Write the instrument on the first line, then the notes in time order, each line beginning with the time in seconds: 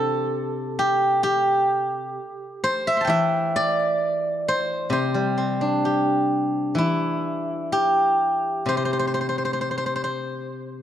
guzheng
Already playing: C3 E3 D4 G4 A4 C5
0.79 G4
1.23 G4
2.64 C5
2.87 E5
2.97 A5 C6
3.05 E3 G5
3.10 E5
3.56 D5
4.48 C5
4.90 C3 C5
5.14 G3
5.38 C4
5.61 D4
5.85 G4
6.75 E3 E4
7.72 G4
8.66 C3 C5
8.77 C5
8.85 C5
8.93 C5
8.99 C5
9.07 C5
9.14 C5
9.21 C5
9.29 C5
9.38 C5
9.45 C5
9.53 C5
9.61 C5
9.71 C5
9.78 C5
9.86 C5
9.96 C5
10.04 C5